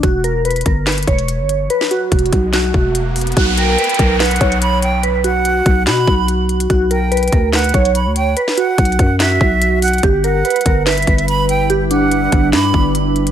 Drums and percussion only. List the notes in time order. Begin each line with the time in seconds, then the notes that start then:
0.03 kick, closed hi-hat
0.24 closed hi-hat
0.45 closed hi-hat
0.51 closed hi-hat
0.56 closed hi-hat
0.61 closed hi-hat
0.66 kick, closed hi-hat
0.87 snare, clap, closed hi-hat
0.92 closed hi-hat
0.98 closed hi-hat
1.03 closed hi-hat
1.07 kick, closed hi-hat
1.19 closed hi-hat
1.28 closed hi-hat
1.49 closed hi-hat
1.70 closed hi-hat
1.81 snare
1.91 closed hi-hat
2.12 kick, closed hi-hat
2.19 closed hi-hat
2.26 closed hi-hat
2.33 kick, closed hi-hat
2.53 snare, clap, closed hi-hat
2.74 kick
2.95 closed hi-hat
3.16 closed hi-hat, open hi-hat
3.21 closed hi-hat
3.27 closed hi-hat
3.32 closed hi-hat
3.37 kick, closed hi-hat
3.58 closed hi-hat
3.78 closed hi-hat
3.84 closed hi-hat
3.89 closed hi-hat
3.94 closed hi-hat
3.99 kick, closed hi-hat
4.20 snare, clap, closed hi-hat
4.26 closed hi-hat
4.31 closed hi-hat
4.36 closed hi-hat
4.41 kick, closed hi-hat
4.52 closed hi-hat
4.62 closed hi-hat
4.82 closed hi-hat
5.03 closed hi-hat
5.24 closed hi-hat
5.45 closed hi-hat
5.66 kick, closed hi-hat
5.87 snare, clap, closed hi-hat
6.07 kick
6.28 closed hi-hat
6.49 closed hi-hat
6.60 closed hi-hat
6.70 kick, closed hi-hat
6.91 closed hi-hat
7.12 closed hi-hat
7.17 closed hi-hat
7.23 closed hi-hat
7.28 closed hi-hat
7.32 kick, closed hi-hat
7.53 snare, clap, closed hi-hat
7.59 closed hi-hat
7.64 closed hi-hat
7.69 closed hi-hat
7.74 kick, closed hi-hat
7.85 closed hi-hat
7.95 closed hi-hat
8.16 closed hi-hat
8.37 closed hi-hat
8.48 snare
8.58 closed hi-hat
8.78 kick, closed hi-hat
8.85 closed hi-hat
8.92 closed hi-hat
8.99 kick, closed hi-hat
9.20 snare, clap, closed hi-hat
9.41 kick
9.62 closed hi-hat
9.82 closed hi-hat, open hi-hat
9.88 closed hi-hat
9.93 closed hi-hat
9.98 closed hi-hat
10.03 kick, closed hi-hat
10.24 closed hi-hat
10.45 closed hi-hat
10.50 closed hi-hat
10.56 closed hi-hat
10.61 closed hi-hat
10.66 kick, closed hi-hat
10.87 snare, clap, closed hi-hat
10.92 closed hi-hat
10.98 closed hi-hat
11.02 closed hi-hat
11.07 kick, closed hi-hat
11.18 closed hi-hat
11.28 closed hi-hat
11.49 closed hi-hat
11.70 closed hi-hat
11.91 closed hi-hat
12.12 closed hi-hat
12.32 kick, closed hi-hat
12.53 snare, clap, closed hi-hat
12.74 kick
12.95 closed hi-hat
13.16 closed hi-hat
13.27 closed hi-hat